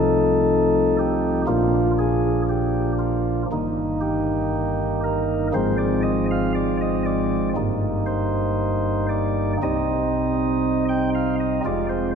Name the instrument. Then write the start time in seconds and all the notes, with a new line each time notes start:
pipe organ
Already playing: C2 C3 F3 A3 D#4 A4
0.99 G4
1.47 A#1 A#2 F3 A#3 D4 F4
1.99 G#4
2.49 G4
2.99 F4
3.52 G1 G2 D#3 A#3 D#4
4.01 G4
5.04 A#4
5.53 G#1 G#2 F3 G#3 C4 C5
5.78 D5
6.03 D#5
6.31 F5
6.55 D5
6.81 D#5
7.05 D5
7.56 G1 G2 G3 A#3 D#4
8.06 C5
9.09 D5
9.62 C2 C3 G3 C4 D#4 D#5
10.89 G5
11.15 F5
11.40 D#5
11.65 F1 F2 G#3 C4 F4 D5
11.89 C5